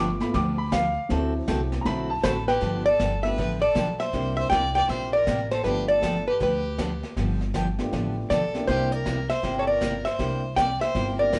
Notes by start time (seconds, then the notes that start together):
Already playing: G1 A3 B3 F4 D6
0.20 A3 B3 F4 B5, snare
0.34 D2 D3 F3 B3 D4 G4 D6, brush sweep, kick, snare
0.58 B5
0.72 D3 F3 B3 D4 G4 F5, kick, snare, hi-hat pedal
1.09 D2 D3 F#3 A3 C4 E4 F#4 A4, brush sweep, kick, snare
1.48 C2 D3 A3 C4 F#4 A4, kick, snare, hi-hat pedal
1.72 snare
1.81 F#3 C4 A#5
1.85 B1 D3 A3 C4 E4 F#4 A4 B5, brush sweep, kick, snare
2.10 A5
2.23 A1 D3 A3 C4 F#4 A4 C5 B5, kick, snare, hi-hat pedal
2.48 G4 B4 G5, snare
2.61 G1 D3 F3 B3 D4 G4, brush sweep, kick, snare
2.86 A4 D5
3.00 G1 D3 F3 B3 D4 G4, kick, snare, hi-hat pedal
3.23 A3 B3 D4 F4 G4 B4 E5, snare
3.38 A1 D3 F3 B3 D4 G4, brush sweep, kick, snare
3.62 A4 D5
3.75 B1 D3 F3 B3 D4 G4, kick, snare, hi-hat pedal
4.00 C5 E5, snare
4.12 C2 C3 G3 A#3 C4 D4 E4 G4, brush sweep, kick, snare
4.37 C5 E5
4.50 C2 C3 G3 A#3 E4 G4 D5 G5, kick, snare, hi-hat pedal
4.75 D5 G5, snare
4.89 A#1 C3 G3 A#3 E4 G4 C5 E5, brush sweep, kick, snare
5.13 A#4 D5
5.27 A1 C3 G3 A#3 E4 G4, kick, snare, hi-hat pedal
5.51 A4 C5, snare
5.64 G1 D3 F3 A3 B3 D4 F4 G4 B4, brush sweep, kick, snare
5.88 A4 D5
6.02 D3 F3 B3 D4 G4, kick, snare, hi-hat pedal
6.28 G4 B4
6.40 D2 D3 F3 B3 D4 G4 B4, brush sweep, kick, snare
6.78 D3 F3 B3 D4 G4, kick, snare, hi-hat pedal
7.03 snare
7.17 G1 D3 F3 B3 D4 G4, brush sweep, kick, snare
7.41 snare
7.54 D3 F3 B3 D4 G4, kick, snare, hi-hat pedal
7.78 A3 B3 D4 F4 G4, snare
7.92 A1 D3 F3 B3 D4 G4, brush sweep, kick, snare
8.30 B1 D3 F3 B3 D4 G4 A4 D5, kick, snare, hi-hat pedal
8.53 A#3 C4 D4 E4 G4, snare
8.67 C2 C3 G3 A#3 E4 G4 C5, brush sweep, kick, snare
8.92 A#4 D5
9.06 C3 G3 A#3 E4 G4, kick, snare, hi-hat pedal
9.30 C5 E5, snare
9.43 G1 C3 G3 A#3 E4 G4, brush sweep, kick, snare
9.59 A4 C#5
9.67 A#4 D5
9.81 C3 G3 A#3 E4 G4, kick, snare, hi-hat pedal
10.05 C5 E5, snare
10.18 C2 C3 G3 A#3 C4 D4 E4 G4, brush sweep, kick, snare
10.56 C3 G3 A#3 E4 G4 D5 G5, kick, snare, hi-hat pedal
10.81 C5 E5, snare
10.95 G1 C3 G3 A#3 E4 G4, brush sweep, kick, snare
11.18 A#3 C4 D4 E4 G4 A#4 D5
11.33 C3 G3 A#3 E4 G4, kick, snare, hi-hat pedal